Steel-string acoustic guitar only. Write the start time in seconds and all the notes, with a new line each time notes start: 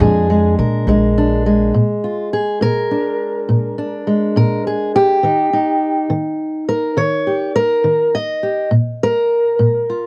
0.00 A#2 G#3 D4 G#4
0.30 G#3
0.59 A#4
0.88 A#2 G#3
1.18 D4
1.46 G#3
1.74 A#2
2.04 F4
2.33 G#4
2.61 A#2 A#4
2.91 D4
3.49 A#2
3.78 D4
4.07 G#3
4.36 A#2 A#4
4.67 G#4
4.96 G4
5.23 D#3 D#4
5.53 D#4
6.10 D#3
6.69 A#4
6.97 D#3 C#5
7.27 G4
7.56 A#4
7.84 D#3
8.15 D#5
8.43 G4
8.71 A#2
9.03 A#4
9.59 A#2
9.90 F4